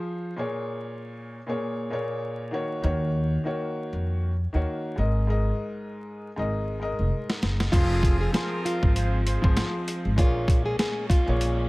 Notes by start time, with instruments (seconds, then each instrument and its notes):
Already playing: upright piano F3 F4 G#4 C5
0.36 upright piano A#2 A#3 G#4 C#5
1.47 upright piano A#2 A#3 G#4 C#5
1.90 upright piano A#2 A#3 G#4 C#5
2.51 upright piano D#3 A#3 F#4 C#5
2.82 upright bass D#2, upright piano D#3 A#3 F#4 C#5
3.44 upright piano D#3 A#3 F#4 C#5
3.93 upright bass F2
4.53 upright bass D#2, upright piano D#3 A#3 F#4 C#5
4.96 upright bass G#1, upright piano G#2 G#3 A#4 D#5
5.27 upright piano G#2 G#3 A#4 D#5
6.36 upright bass G#1, upright piano G#2 G#3 A#4 D#5
6.80 upright piano G#2 G#3 A#4 D#5
6.99 upright bass F1
7.30 snare
7.42 upright bass F#1, snare
7.60 snare
7.72 upright bass F1, string section F3 G#3 C4, upright piano F3 F4 G#4 C5, trumpet section C4 F4 G#4, nylon-string guitar F4, kick, closed hi-hat, crash
8.03 kick, closed hi-hat
8.21 nylon-string guitar G#4
8.33 upright piano F3 F4 G#4 C5, trumpet section C4 F4 A#4, nylon-string guitar G#4, snare, closed hi-hat
8.65 nylon-string guitar F4, closed hi-hat
8.83 upright bass G#1, kick
8.96 trumpet section F4 G#4 C5, closed hi-hat
9.27 trumpet section F4 G#4 C5, closed hi-hat
9.42 upright bass G#1, upright piano F3 F4 G#4 C5, kick
9.57 snare, closed hi-hat
9.88 closed hi-hat
10.05 upright bass G#1
10.16 upright bass A#1, upright piano A#2 A#3 G#4 C#5, string section G#3 A#3 C#4, nylon-string guitar F4, kick, closed hi-hat
10.48 kick, closed hi-hat
10.66 nylon-string guitar G#4
10.79 nylon-string guitar G#4, snare, closed hi-hat
11.10 nylon-string guitar F4, kick, closed hi-hat
11.26 upright bass A#1, upright piano A#2 A#3 G#4 C#5
11.41 closed hi-hat